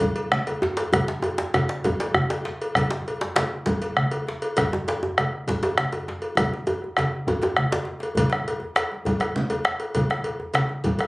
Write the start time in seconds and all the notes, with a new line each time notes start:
0.00 bombo low, cowbell, high conga, djembe bass
0.16 cowbell
0.32 bombo rim, low conga
0.47 bombo rim, cowbell, high conga, djembe tone
0.62 djembe slap, djembe tone
0.77 bombo rim, cowbell, djembe slap, high conga
0.93 bombo rim, bombo low, cowbell, djembe slap, high conga, djembe bass, low conga
1.08 djembe slap
1.22 cowbell, djembe slap, djembe tone
1.38 djembe slap, djembe tone, high conga
1.54 bombo rim, cowbell, djembe slap, low conga, djembe bass
1.69 djembe slap
1.84 bombo rim, bombo low, cowbell, djembe slap, high conga, djembe tone, djembe bass
2.00 cowbell, djembe slap
2.14 bombo rim, djembe bass, low conga
2.30 cowbell, djembe slap, djembe tone
2.45 bombo rim, djembe slap, high conga
2.62 cowbell
2.75 bombo rim, bombo low, cowbell, djembe slap, high conga, djembe bass, low conga
2.90 djembe slap
3.06 cowbell, djembe slap
3.21 djembe slap, high conga, djembe tone
3.36 bombo rim, cowbell, djembe slap, low conga
3.52 djembe slap
3.66 bombo rim, bombo low, cowbell, djembe slap, high conga, djembe bass
3.82 cowbell, djembe slap
3.97 bombo rim, low conga
4.12 cowbell, djembe tone
4.27 bombo rim, djembe slap, high conga
4.42 cowbell
4.57 bombo rim, bombo low, cowbell, djembe slap, high conga, low conga, djembe bass
4.73 djembe slap, djembe tone, high conga
4.88 cowbell, djembe slap
5.03 djembe tone, high conga
5.18 bombo rim, cowbell, djembe tone, low conga
5.33 djembe slap
5.47 bombo rim, bombo low, cowbell, djembe slap, high conga, djembe bass
5.49 djembe slap
5.63 cowbell, djembe slap, djembe tone
5.78 bombo rim, djembe slap, low conga
5.92 cowbell, djembe tone
6.08 bombo rim, djembe slap, djembe tone, high conga
6.22 cowbell
6.37 bombo rim, bombo low, cowbell, djembe tone, high conga, low conga, djembe bass
6.53 djembe slap, high conga
6.67 cowbell, djembe tone
6.82 bombo rim, djembe tone
6.97 bombo rim, cowbell, djembe slap, djembe tone, low conga
7.12 bombo rim, djembe slap
7.27 bombo low, cowbell, djembe slap, high conga, djembe tone, djembe bass
7.42 cowbell, djembe slap, djembe tone
7.57 bombo rim, high conga, djembe bass, low conga
7.71 cowbell, djembe slap, djembe bass
7.85 bombo rim, djembe slap
8.00 cowbell, djembe slap
8.15 bombo low, cowbell, high conga, djembe bass, low conga
8.30 bombo rim, djembe slap, high conga
8.44 cowbell, djembe slap
8.60 djembe tone
8.76 bombo rim, cowbell, djembe slap
8.92 high conga
9.05 bombo low, cowbell, high conga, djembe bass
9.20 bombo rim, cowbell, djembe slap
9.36 low conga
9.50 cowbell, djembe slap, high conga, djembe tone
9.65 bombo rim, djembe slap
9.80 cowbell
9.95 bombo low, cowbell, high conga, low conga, djembe bass
10.10 bombo rim, djembe slap, high conga
10.24 cowbell, djembe slap
10.40 djembe tone
10.54 bombo rim, cowbell, djembe slap, low conga
10.69 high conga
10.84 bombo low, cowbell, high conga, djembe bass
10.99 bombo rim, cowbell, djembe slap